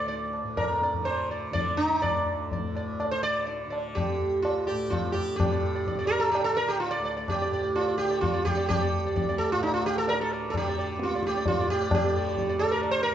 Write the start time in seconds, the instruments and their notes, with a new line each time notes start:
Already playing: tanpura D2 A2 D3
0.08 sitar D5, tabla tin
0.33 tabla na
0.43 tanpura A2
0.57 sitar A#4, tabla na, tabla ge
0.82 sitar D5, tabla te
0.94 tanpura D3, tabla ge
1.05 sitar C5, tabla na
1.31 sitar D5
1.51 tanpura D3, sitar D5, tabla tin, tabla ge
1.77 sitar D#4
2.02 tanpura D2, sitar D5, tabla na, tabla ge
2.52 sitar D5, tabla tin, tabla ge
2.58 tanpura A2
2.76 sitar D5, tabla na
3.00 sitar D5, tabla na
3.11 tanpura D3, sitar C5
3.23 sitar D5
3.47 sitar D5, tabla tin
3.66 tanpura D3
3.70 sitar D5, tabla na
3.95 sitar G4, tabla na, tabla ge
4.18 tanpura D2
4.42 sitar F4, tabla na
4.67 sitar G4 D5
4.71 tanpura A2
4.90 sitar F4 D5, tabla na, tabla ge
5.12 sitar G4 D5
5.17 tabla ge
5.23 tanpura D3
5.36 sitar G4, tabla na, tabla ge
5.40 tanpura A2
5.51 sitar D5
5.75 sitar D5
5.87 sitar D5, tabla tin, tabla ge
5.94 tanpura D3
5.99 sitar D5
6.07 sitar A#4
6.12 tabla na
6.20 sitar A4
6.31 sitar G4, tabla na
6.44 tanpura D3, sitar A4
6.57 sitar A#4
6.68 sitar G4
6.80 sitar F4, tabla tin
6.91 sitar D5
6.99 tanpura D2
7.05 sitar D5, tabla na
7.17 sitar D5
7.28 sitar G4, tabla na, tabla ge
7.42 sitar D5
7.49 tanpura A2, sitar D5
7.63 sitar D5
7.76 sitar F4, tabla na
7.88 sitar D5
7.98 tanpura D3, sitar G4
8.11 sitar D5
8.21 sitar F4, tabla na, tabla ge
8.34 sitar D5
8.45 sitar G4, tabla ge
8.52 tanpura D3
8.57 sitar D5
8.69 sitar G4, tabla na, tabla ge
8.81 sitar D5
9.04 tanpura D2, sitar D5
9.16 sitar D5, tabla tin, tabla ge
9.29 sitar D5
9.38 sitar A4, tabla na
9.52 tanpura A2, sitar F4
9.63 sitar D#4, tabla na
9.74 sitar F4
9.86 sitar G4
9.98 sitar A4
10.07 tanpura D3, sitar A#4, tabla tin
10.21 sitar A4
10.31 sitar D5, tabla na
10.50 sitar A4, tabla na, tabla ge
10.57 tanpura D3, sitar G4
10.69 sitar D5
10.79 sitar D5
10.99 sitar F4, tabla te
11.07 tanpura D2
11.11 sitar D5, tabla te
11.23 sitar G4, tabla ke
11.34 sitar D5, tabla te
11.46 sitar F4, tabla tin, tabla ge
11.57 tanpura A2, sitar D5
11.70 sitar G4
11.83 sitar D5
11.91 sitar G4, tabla na, tabla ge
12.06 tanpura D3, sitar D5
12.16 sitar D5
12.28 sitar D5
12.37 sitar D5, tabla tin, tabla ge
12.49 sitar D5
12.59 tanpura D3, sitar A4, tabla na
12.71 sitar A#4
12.83 sitar D5, tabla na
12.91 sitar C5
13.03 sitar A#4
13.10 tanpura D2